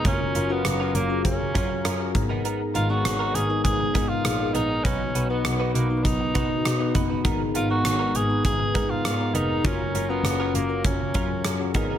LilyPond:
<<
  \new Staff \with { instrumentName = "Clean electric guitar" } { \time 4/4 \key fis \major \tempo 4 = 100 <cis' eis' ais'>16 r16 <cis' eis' ais'>16 <cis' eis' ais'>16 r16 <cis' eis' ais'>16 <cis' eis' ais'>16 r8. <cis' eis' ais'>16 r16 <cis' eis' ais'>16 r8 <b dis' ais'>16 | <b dis' ais'>16 r16 <b dis' ais'>16 <b dis' ais'>16 r16 <b dis' ais'>16 <b dis' ais'>16 r8. <b dis' ais'>16 r8. <b dis' ais'>16 <b dis' ais'>16 | <dis' fis' b'>16 r16 <dis' fis' b'>16 <dis' fis' b'>16 r16 <dis' fis' b'>16 <dis' fis' b'>16 r8. <dis' fis' b'>16 r8. <dis' fis' b'>16 <dis' fis' b'>16 | <b dis' ais'>16 r16 <b dis' ais'>16 <b dis' ais'>16 r16 <b dis' ais'>16 <b dis' ais'>16 r8. <b dis' ais'>16 r8. <b dis' ais'>16 <b dis' ais'>16 |
<cis' eis' ais'>16 r16 <cis' eis' ais'>16 <cis' eis' ais'>16 r16 <cis' eis' ais'>16 <cis' eis' ais'>16 r8. <cis' eis' ais'>16 r8. <b dis' ais'>16 <b dis' ais'>16 | }
  \new Staff \with { instrumentName = "Tine electric piano" } { \time 4/4 \key fis \major <cis' eis' ais'>8. <cis' eis' fis' ais'>4 <cis' eis' fis' gis'>8. <cis' eis' fis' ais'>8. <cis' eis' fis' ais'>16 <ais b dis' gis' ais'>8~ | <ais b dis' gis' ais'>8. <b dis' gis' cis''>4 <b dis' gis' ais'>8. <b dis' gis' ais'>8. <b dis' gis' ais'>8. | <b fis' b'>8. <b dis' fis' b'>4 <b dis' fis' ais' b'>8. <b dis' fis' b'>8. <b dis' fis' b'>8. | <b dis' gis' ais'>8. <b dis' gis' ais'>4 <b dis' gis' b'>8. <b dis' gis' ais'>8. <b dis' gis' ais'>8. |
<cis' eis' ais'>8. <cis' eis' fis' ais'>4 <cis' eis' fis' ais'>8. <cis' eis' fis' ais'>8. <cis' eis' fis' gis'>16 <b dis' gis' ais'>8 | }
  \new Staff \with { instrumentName = "Tine electric piano" } { \clef bass \time 4/4 \key fis \major r2. r8 gis,8~ | gis,4 r2. | b,4. r2 r8 | gis,4. r2 r8 |
r2. r8 gis,8 | }
  \new Staff \with { instrumentName = "Tenor saxophone" } { \time 4/4 \key fis \major cis'8. b8. ais8 cis'4. r8 | r8 eis'16 fis'8. gis'8 gis'8. eis'8. dis'8 | cis'8. b8. ais8 dis'4. r8 | r8 eis'16 fis'8. gis'8 gis'8. eis'8. dis'8 |
cis'8. b8. ais8 cis'4. r8 | }
  \new Staff \with { instrumentName = "Analog synth pad" } { \time 4/4 \key fis \major << { <eis'' ais''>1~ | <eis'' ais''>1 | r1 | ais''1 |
eis''2.~ eis''8 r8 | } \\ { <fis cis'>2.~ <fis cis'>8 <gis b dis'>8~ | <gis b dis'>1 | <b, fis'>1 | <gis b>1 |
<fis cis'>2.~ <fis cis'>8 <gis b dis'>8 | } >> }
  \new Staff \with { instrumentName = "Double bass" } { \clef bass \time 4/4 \key fis \major fis,,8 fis,,8 fis,,8 fis,,8 fis,,8 fis,8 fis,8 gis,,8~ | gis,,8 gis,,8 gis,,8 gis,,8 gis,,8 gis,8 ais,,8 ais,,8 | b,,8 b,,8 b,,8 b,,8 b,,8 b,8 b,8 fis,,8 | gis,,8 gis,,8 gis,,8 gis,,8 gis,,8 gis,8 gis,8 eis,,8 |
fis,,8 fis,,8 fis,,8 fis,,8 fis,,8 fis,8 fis,8 gis,,8 | }
  \new DrumStaff \with { instrumentName = "Drums" } \drummode { \time 4/4 <hh bd>8 hh8 <hh ss>8 hh8 <hh bd>8 <hh bd>8 <hh ss>8 <hh bd>8 | hh8 hh8 <hh ss>8 hh8 <hh bd>8 <hh bd>8 <hh ss>8 hh8 | <hh bd>8 hh8 <hh ss>8 hh8 <hh bd>8 <hh bd>8 <hh ss>8 <hh bd>8 | <hh bd>8 hh8 <hh ss>8 hh8 <hh bd>8 <hh bd>8 <hh ss>8 hh8 |
<hh bd>8 hh8 <hh ss>8 hh8 <hh bd>8 <hh bd>8 <hh ss>8 <hh bd>8 | }
>>